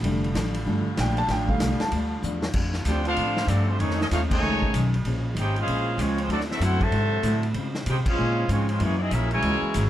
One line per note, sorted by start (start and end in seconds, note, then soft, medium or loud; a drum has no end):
0.03 0.33 F1 loud
0.03 2.52 D3 medium
0.03 0.52 D3 medium
0.03 0.26 F3 soft
0.03 2.52 G3 medium
0.03 0.53 G3 soft
0.03 2.52 A3 medium
0.03 0.53 A3 medium
0.03 0.26 A3 medium
0.03 2.52 F4 medium
0.03 ride medium
0.07 0.26 D4 medium
0.07 0.27 G4 medium
0.24 ride medium
0.34 0.65 A1 medium
0.34 0.56 F3 medium
0.34 0.56 A3 medium
0.34 0.56 D4 medium
0.34 0.57 G4 medium
0.34 snare medium
0.34 hi-hat pedal medium
0.34 ride medium
0.54 ride medium
0.66 0.85 G1 loud
0.66 0.84 D3 soft
0.66 0.88 F3 medium
0.66 0.85 G3 soft
0.66 0.88 A3 medium
0.66 0.85 A3 medium
0.66 0.88 D4 medium
0.66 0.89 G4 medium
0.87 muted upright bass stroke soft
0.97 1.27 A#1 loud
0.97 1.19 F3 medium
0.97 1.20 A3 medium
0.97 1.20 D4 medium
0.97 1.20 G4 medium
0.97 1.18 G5 medium
0.97 snare medium
0.97 hi-hat pedal medium
0.97 ride medium
1.17 1.29 A5 loud
1.17 ride medium
1.28 1.59 A1 loud
1.28 1.50 F3 soft
1.28 1.51 A3 medium
1.28 1.51 D4 medium
1.28 1.51 G4 soft
1.28 1.49 G5 medium
1.28 snare soft
1.28 ride medium
1.48 2.50 D3 medium
1.48 2.50 G3 soft
1.48 2.51 A3 medium
1.48 1.78 F5 medium
1.48 kick medium
1.60 1.79 C2 medium
1.60 1.81 F3 medium
1.60 1.81 A3 medium
1.60 1.82 D4 medium
1.60 1.82 G4 medium
1.60 snare medium
1.60 hi-hat pedal medium
1.60 ride medium
1.80 2.10 A5 medium
1.80 snare medium
1.80 ride medium
1.91 2.22 D2 loud
1.91 2.12 F3 soft
1.91 2.13 A3 medium
1.91 2.13 D4 medium
1.91 2.13 G4 medium
1.91 ride medium
2.23 2.53 E2 loud
2.23 2.44 F3 medium
2.23 2.44 A3 medium
2.23 2.44 D4 medium
2.23 2.45 G4 medium
2.23 hi-hat pedal medium
2.42 snare medium
2.53 2.85 F2 loud
2.53 3.80 D3 medium
2.53 2.76 F3 medium
2.53 3.79 G3 medium
2.53 2.76 A3 medium
2.53 4.88 A3 medium
2.53 2.76 D4 medium
2.53 3.79 F4 medium
2.53 2.77 G4 medium
2.53 kick medium
2.53 crash medium
2.73 snare soft
2.85 3.16 D2 loud
2.85 3.07 F3 medium
2.85 3.07 A3 medium
2.85 3.04 C4 medium
2.85 3.05 D4 medium
2.85 3.07 D4 medium
2.85 3.04 D4 medium
2.85 3.05 G4 medium
2.85 3.08 G4 medium
2.85 3.04 A4 medium
2.85 3.04 C5 medium
2.85 3.04 G5 medium
2.85 hi-hat pedal medium
2.85 ride medium
3.05 3.45 C4 medium
3.05 3.45 D4 medium
3.05 3.46 D4 medium
3.05 3.45 F4 medium
3.05 3.46 A4 medium
3.05 3.46 C5 medium
3.05 3.46 F5 loud
3.05 ride medium
3.16 3.47 A2 medium
3.16 3.39 F3 soft
3.16 3.39 A3 medium
3.16 3.39 D4 soft
3.16 ride medium
3.21 3.40 G4 medium
3.37 snare medium
3.47 3.78 G2 loud
3.47 3.66 D3 medium
3.47 3.70 F3 medium
3.47 3.67 A3 medium
3.47 3.70 A3 medium
3.47 3.68 C4 medium
3.47 3.68 D4 medium
3.47 3.70 D4 medium
3.47 3.68 G4 medium
3.47 3.70 G4 medium
3.47 3.68 A4 medium
3.47 3.68 D5 medium
3.47 hi-hat pedal medium
3.47 ride medium
3.68 3.80 D3 medium
3.68 3.79 A3 medium
3.68 3.80 C4 medium
3.68 3.81 D4 medium
3.68 3.81 G4 medium
3.68 3.80 C5 medium
3.79 4.10 F2 medium
3.79 4.01 F2 medium
3.79 4.88 C#3 medium
3.79 3.97 D#3 medium
3.79 4.02 D#3 soft
3.79 4.88 F3 medium
3.79 4.00 A3 medium
3.79 3.97 A3 medium
3.79 4.02 A3 medium
3.79 3.99 C#4 medium
3.79 4.88 D#4 medium
3.79 4.00 D#4 medium
3.79 4.00 G#4 medium
3.79 4.00 C#5 loud
3.79 ride medium
3.83 4.03 C#4 medium
3.90 snare soft
3.98 4.04 D#3 medium
3.98 4.04 A3 medium
3.98 4.07 C#4 medium
3.98 4.04 D#4 medium
3.98 4.07 G#4 medium
3.98 4.07 A4 medium
3.98 snare soft
4.02 4.07 D#5 loud
4.10 4.42 D#2 loud
4.10 4.32 F2 medium
4.10 4.33 D#3 medium
4.10 4.19 A3 medium
4.10 4.33 A3 medium
4.10 4.20 C#4 medium
4.10 4.33 C#4 medium
4.10 4.21 D#4 medium
4.10 4.20 F4 medium
4.10 4.21 A4 medium
4.10 4.21 C#5 medium
4.10 4.21 F5 loud
4.10 snare soft
4.10 hi-hat pedal medium
4.10 ride medium
4.31 4.90 C#3 medium
4.31 4.90 D#3 loud
4.31 4.90 A3 medium
4.31 4.90 D#4 loud
4.31 4.90 A4 loud
4.31 4.90 C#5 loud
4.31 4.90 G#5 loud
4.31 kick medium
4.31 crash medium
4.43 4.73 C#2 medium
4.43 4.64 F2 medium
4.43 4.64 D#3 medium
4.43 4.65 A3 soft
4.43 4.65 C#4 medium
4.62 kick medium
4.74 5.04 B1 loud
4.74 4.95 F2 medium
4.74 4.95 D#3 medium
4.74 4.95 A3 medium
4.74 4.96 C#4 medium
4.74 hi-hat pedal medium
4.74 ride medium
4.94 ride medium
5.05 5.34 A#1 loud
5.05 6.30 C#3 medium
5.05 6.30 G#3 medium
5.05 6.29 A#3 medium
5.05 5.27 A#3 medium
5.05 6.29 C#4 medium
5.05 5.27 C#4 medium
5.05 5.27 G#4 medium
5.05 5.27 C5 medium
5.05 ride medium
5.35 5.66 G#1 medium
5.35 5.57 A#3 medium
5.35 5.58 C#4 medium
5.35 5.58 G#4 medium
5.35 5.58 C5 medium
5.35 hi-hat pedal medium
5.35 ride medium
5.39 5.57 D#4 medium
5.39 5.57 G4 medium
5.39 5.56 G#4 medium
5.39 5.56 C5 medium
5.39 5.56 G5 medium
5.56 5.97 G#3 medium
5.56 5.97 C#4 medium
5.56 5.97 F4 medium
5.56 5.98 C5 medium
5.56 5.98 F5 loud
5.56 ride medium
5.60 5.98 C#4 medium
5.60 5.98 G#4 medium
5.66 5.97 A#1 medium
5.66 5.89 A#3 soft
5.66 5.89 C#4 medium
5.66 5.90 G#4 medium
5.66 5.90 C5 medium
5.66 ride medium
5.98 6.28 C#2 loud
5.98 6.19 F3 medium
5.98 6.19 G#3 medium
5.98 6.20 G#3 medium
5.98 6.19 A#3 medium
5.98 6.20 C4 medium
5.98 6.20 C#4 medium
5.98 6.19 C#4 medium
5.98 6.19 F4 medium
5.98 6.20 G#4 medium
5.98 6.20 C5 medium
5.98 6.20 C#5 loud
5.98 hi-hat pedal medium
5.98 ride medium
6.18 6.31 F3 medium
6.18 6.31 G#3 medium
6.18 6.32 G#3 medium
6.18 6.31 C4 medium
6.18 6.32 C#4 medium
6.18 ride medium
6.22 6.32 F4 medium
6.22 6.32 C5 medium
6.29 6.59 D2 medium
6.29 6.51 D3 soft
6.29 7.55 D3 medium
6.29 6.51 F#3 soft
6.29 7.55 F#3 medium
6.29 6.40 F#3 medium
6.29 6.40 A3 medium
6.29 6.51 C4 soft
6.29 6.40 C4 medium
6.29 6.40 D4 medium
6.29 7.55 E4 medium
6.29 6.52 E4 medium
6.29 6.40 F#4 medium
6.29 6.40 A4 medium
6.29 8.78 C5 medium
6.29 6.40 D5 loud
6.29 ride medium
6.40 snare soft
6.50 6.62 A3 medium
6.50 6.61 C4 medium
6.50 6.62 C4 medium
6.50 6.62 E4 medium
6.50 6.61 F#4 medium
6.50 6.61 A4 medium
6.50 6.61 E5 medium
6.50 snare soft
6.60 6.90 F#2 medium
6.60 6.82 D3 medium
6.60 6.83 F#3 medium
6.60 6.82 A3 medium
6.60 6.83 C4 medium
6.60 6.82 C4 medium
6.60 6.83 E4 medium
6.60 6.82 E4 medium
6.60 6.82 F#4 loud
6.60 6.82 A4 medium
6.60 6.81 C5 medium
6.60 6.82 F#5 loud
6.60 hi-hat pedal medium
6.60 ride medium
6.81 7.44 C3 medium
6.81 7.44 F#3 loud
6.81 7.44 F#4 loud
6.81 7.44 A4 loud
6.81 7.44 C5 loud
6.81 7.44 E5 loud
6.81 7.44 A5 loud
6.81 kick medium
6.81 ride soft
6.91 7.22 G#2 medium
6.91 7.13 D3 soft
6.91 7.14 F#3 soft
6.91 7.14 C4 medium
6.91 7.14 E4 medium
6.91 ride medium
7.23 7.54 A2 loud
7.23 7.44 D3 medium
7.23 7.45 F#3 medium
7.23 7.45 C4 medium
7.23 7.45 E4 medium
7.23 hi-hat pedal medium
7.23 ride medium
7.43 ride medium
7.54 7.76 C#3 medium
7.54 7.85 C#3 loud
7.54 8.80 C#3 medium
7.54 7.76 G#3 medium
7.54 9.90 G#3 medium
7.54 7.76 C4 medium
7.54 7.77 F4 medium
7.54 8.80 F4 medium
7.54 ride medium
7.74 snare soft
7.86 8.04 C3 loud
7.86 8.07 C#3 medium
7.86 8.07 G#3 medium
7.86 8.08 C4 medium
7.86 7.97 D#4 medium
7.86 8.08 F4 medium
7.86 7.97 G4 medium
7.86 7.97 G#4 medium
7.86 7.98 C5 medium
7.86 7.97 G5 medium
7.86 hi-hat pedal medium
7.86 ride medium
8.05 8.47 C#4 loud
8.05 8.47 F4 medium
8.05 8.47 G#4 medium
8.05 8.47 C5 medium
8.05 8.47 F5 loud
8.05 muted upright bass stroke soft
8.05 kick loud
8.05 crash medium
8.09 8.48 G#3 medium
8.09 8.48 C#4 medium
8.18 8.48 A#2 loud
8.18 8.39 C#3 soft
8.18 8.39 G#3 medium
8.18 8.40 C4 soft
8.18 8.40 F4 soft
8.49 8.79 G#2 loud
8.49 8.70 C#3 medium
8.49 8.68 F3 medium
8.49 8.67 G#3 medium
8.49 8.70 G#3 medium
8.49 8.68 G#3 medium
8.49 8.70 C4 medium
8.49 8.69 C4 medium
8.49 8.68 C#4 medium
8.49 8.71 F4 medium
8.49 8.69 F4 medium
8.49 8.68 C#5 loud
8.49 hi-hat pedal medium
8.49 ride medium
8.69 8.81 F3 medium
8.69 8.80 G#3 medium
8.69 8.81 G#3 medium
8.69 8.81 C4 medium
8.69 8.80 C#4 medium
8.69 8.81 F4 medium
8.69 8.81 C5 medium
8.69 ride medium
8.80 9.11 F#2 medium
8.80 8.96 E3 medium
8.80 9.90 E3 medium
8.80 9.02 F#3 soft
8.80 9.90 A#3 medium
8.80 8.96 A#3 medium
8.80 9.02 A#3 medium
8.80 8.96 A#3 medium
8.80 8.96 C#4 medium
8.80 8.96 E4 medium
8.80 9.02 E4 medium
8.80 9.90 F#4 medium
8.80 8.96 G#4 medium
8.80 9.02 G#4 medium
8.80 8.96 C#5 loud
8.80 ride medium
8.97 9.12 D#4 medium
8.97 9.01 D5 medium
9.01 9.12 C4 medium
9.01 9.12 E4 medium
9.01 9.12 G#4 medium
9.01 9.12 D#5 medium
9.11 9.42 A#1 loud
9.11 9.33 F#3 medium
9.11 9.31 A#3 medium
9.11 9.33 A#3 medium
9.11 9.31 C#4 medium
9.11 9.32 C#4 medium
9.11 9.32 E4 medium
9.11 9.33 E4 medium
9.11 9.32 G#4 medium
9.11 9.33 G#4 medium
9.11 9.31 A#4 medium
9.11 9.32 E5 loud
9.11 hi-hat pedal medium
9.11 ride medium
9.31 9.90 C#3 medium
9.31 9.90 E3 loud
9.31 9.90 G#3 loud
9.31 9.90 E4 loud
9.31 9.90 A#4 loud
9.31 9.90 C#5 loud
9.31 9.90 G#5 loud
9.31 ride medium
9.42 9.61 C#2 medium
9.42 9.64 F#3 soft
9.42 9.64 A#3 medium
9.42 9.65 E4 medium
9.42 9.65 G#4 medium
9.42 ride medium
9.62 muted upright bass stroke soft
9.74 9.90 G#1 loud
9.74 9.90 F#3 medium
9.74 9.90 A#3 medium
9.74 9.90 E4 medium
9.74 9.90 G#4 medium
9.74 hi-hat pedal medium
9.74 ride medium